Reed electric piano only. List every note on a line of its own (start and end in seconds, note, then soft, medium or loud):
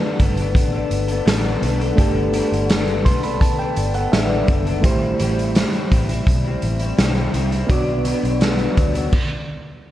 0.00 1.92 A3 medium
0.00 1.93 D4 medium
0.00 1.94 G4 medium
0.00 1.95 B4 medium
1.96 4.79 A3 medium
1.96 4.80 D4 medium
1.96 4.80 G4 medium
2.01 4.81 A4 medium
3.05 3.22 C6 medium
3.23 3.40 B5 medium
3.41 3.58 A5 medium
3.59 3.92 G5 medium
3.95 4.11 F#5 medium
4.12 4.29 E5 medium
4.30 4.80 D5 medium
4.81 7.64 A3 medium
4.81 7.65 E4 medium
4.81 7.66 G4 medium
4.86 7.67 C5 medium
7.67 9.08 B3 medium
7.67 9.09 D4 medium
7.67 9.10 F#4 medium
7.72 9.11 D5 medium